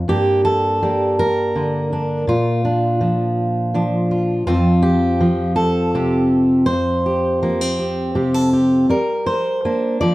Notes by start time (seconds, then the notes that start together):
0.08 G2 G3 A#3 D4 G4
0.45 A4
0.82 G3 A#3
1.19 A#4
1.56 D3
1.93 D4
2.27 A#2 F4
2.65 D4
3.01 F3
3.74 F3 D4
4.11 F4
4.47 F2 F3 C4 F4
4.82 G4
5.21 F3
5.56 A4
5.95 C3 G4
6.66 F2 C5
7.06 G4
7.43 F3 A#3
7.61 C4
7.79 G4
8.15 C3 G4
8.34 A4
8.53 G4
8.89 G3 A#4
9.26 C5
9.65 A#3 D4
10.01 F3 D5